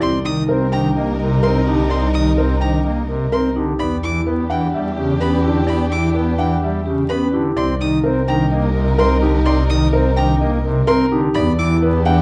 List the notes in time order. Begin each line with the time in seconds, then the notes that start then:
0.01 C2 C4 D#4 A#4 D5 C6
0.25 D#3 D#4 D#6
0.49 C4 A#4 C5
0.72 D#3 D4 G5 A#5
0.96 A#3 D#5
1.20 C3 A#4
1.43 C4 A#4 C6
1.67 D3 D#4 G4
1.89 C4 D5 C6
2.14 D#3 D#4 D#6
2.37 C4 A#4 C5
2.60 D#3 D4 G5 A#5
2.85 A#3 D#5
3.08 C3 A#4
3.32 C4 A#4 C6
3.56 D3 D#4 G4
3.79 E2 B3 D4 G4 D5 B5
4.03 E3 E4 D6
4.26 B3 B4
4.49 E3 D4 F#5 G5
4.74 G3 E5
4.97 C#3 G4
5.20 B3 C#4 B4 B5
5.44 D3 E4 G4
5.67 B3 D5 B5
5.91 E3 E4 D6
6.15 B3 B4
6.38 E3 D4 F#5 G5
6.62 G3 E5
6.85 C#3 G4
7.09 B3 C#4 B4 B5
7.33 D3 E4 G4
7.57 C2 C4 D#4 A#4 D5 C6
7.81 D#3 D#4 D#6
8.04 C4 A#4 C5
8.27 D#3 D4 G5 A#5
8.51 A#3 D#5
8.74 C3 A#4
8.98 C4 A#4 C6
9.21 D3 D#4 G4
9.46 C4 D5 C6
9.69 D#3 D#4 D#6
9.93 C4 A#4 C5
10.16 D#3 D4 G5 A#5
10.41 A#3 D#5
10.64 C3 A#4
10.87 C4 A#4 C6
11.11 D3 D#4 G4
11.34 E2 B3 D4 G4 D5 B5
11.58 E3 E4 D6
11.82 B3 B4
12.05 E3 D4 F#5 G5